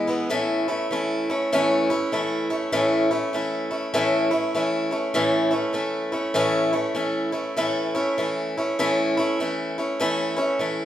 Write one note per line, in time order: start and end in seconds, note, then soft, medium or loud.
0.07 0.29 E3 medium
0.07 0.30 G#3 medium
0.07 0.31 B3 medium
0.07 0.30 E4 medium
0.30 0.68 A2 medium
0.30 0.68 E3 medium
0.30 0.68 A3 medium
0.30 0.68 C#4 medium
0.30 0.67 E4 medium
0.68 0.91 A3 medium
0.68 0.91 C#4 medium
0.68 0.91 E4 medium
0.91 1.28 E3 medium
0.91 1.29 A3 medium
0.91 1.29 C#4 medium
0.91 1.28 E4 medium
1.30 1.52 A3 soft
1.30 1.52 C#4 medium
1.30 1.52 E4 medium
1.52 1.90 A2 medium
1.52 1.90 E3 medium
1.52 1.90 A3 medium
1.52 1.90 C#4 loud
1.52 1.89 E4 medium
1.90 2.12 A3 medium
1.90 2.12 C#4 medium
1.90 2.12 E4 medium
2.12 2.50 E3 medium
2.12 2.50 A3 medium
2.12 2.50 C#4 medium
2.12 2.49 E4 medium
2.50 2.72 A3 soft
2.50 2.72 C#4 medium
2.50 2.73 E4 medium
2.72 3.10 A2 medium
2.72 3.10 E3 medium
2.72 3.10 A3 medium
2.72 3.10 C#4 medium
2.72 3.10 E4 medium
3.11 3.33 A3 soft
3.11 3.33 C#4 medium
3.11 3.33 E4 medium
3.33 3.71 E3 medium
3.33 3.71 A3 medium
3.33 3.70 C#4 medium
3.33 3.69 E4 medium
3.71 3.93 A3 soft
3.71 3.94 C#4 soft
3.71 3.94 E4 medium
3.94 4.31 A2 medium
3.94 4.31 E3 medium
3.94 4.32 A3 medium
3.94 4.31 C#4 loud
3.94 4.30 E4 medium
4.31 4.54 A3 soft
4.31 4.54 C#4 medium
4.31 4.54 E4 medium
4.55 4.92 E3 medium
4.55 4.91 A3 medium
4.55 4.91 C#4 medium
4.55 4.90 E4 medium
4.91 5.14 A3 soft
4.91 5.14 C#4 medium
4.91 5.14 E4 medium
5.14 5.52 A2 medium
5.14 5.52 E3 medium
5.14 5.52 A3 medium
5.14 5.51 C#4 medium
5.14 5.49 E4 medium
5.51 5.73 A3 medium
5.51 5.73 C#4 medium
5.51 5.74 E4 medium
5.73 6.12 E3 medium
5.73 6.12 A3 medium
5.73 6.12 C#4 medium
5.73 6.11 E4 medium
6.12 6.34 A3 soft
6.12 6.35 C#4 medium
6.12 6.34 E4 medium
6.34 6.73 A2 medium
6.34 6.73 E3 medium
6.34 6.73 A3 medium
6.34 6.72 C#4 medium
6.34 6.71 E4 loud
6.73 6.93 A3 soft
6.73 6.95 C#4 medium
6.73 6.95 E4 medium
6.95 7.33 E3 medium
6.95 7.33 A3 medium
6.95 7.32 C#4 medium
6.95 7.31 E4 medium
7.32 7.56 A3 medium
7.32 7.57 C#4 soft
7.32 7.56 E4 medium
7.57 7.95 A2 medium
7.57 7.95 E3 medium
7.57 7.95 A3 medium
7.57 7.95 C#4 medium
7.57 7.93 E4 medium
7.95 8.18 A3 soft
7.95 8.18 C#4 medium
7.95 8.18 E4 medium
8.18 8.56 E3 medium
8.18 8.56 A3 medium
8.18 8.56 C#4 medium
8.18 8.56 E4 medium
8.57 8.78 A3 soft
8.57 8.79 C#4 medium
8.57 8.79 E4 medium
8.79 9.16 A2 medium
8.79 9.17 E3 medium
8.79 9.17 A3 medium
8.79 9.17 C#4 medium
8.79 9.16 E4 medium
9.17 9.39 A3 medium
9.17 9.40 C#4 medium
9.17 9.40 E4 medium
9.40 9.77 E3 medium
9.40 9.78 A3 medium
9.40 9.78 C#4 medium
9.40 9.77 E4 medium
9.78 9.99 A3 soft
9.78 10.00 C#4 medium
9.78 10.00 E4 medium
10.00 10.37 A2 medium
10.00 10.38 E3 medium
10.00 10.38 A3 medium
10.00 10.37 C#4 medium
10.00 10.35 E4 loud
10.36 10.59 A3 medium
10.36 10.60 C#4 medium
10.36 10.60 E4 medium
10.59 10.85 E3 medium
10.59 10.85 A3 medium
10.59 10.85 C#4 medium
10.59 10.85 E4 medium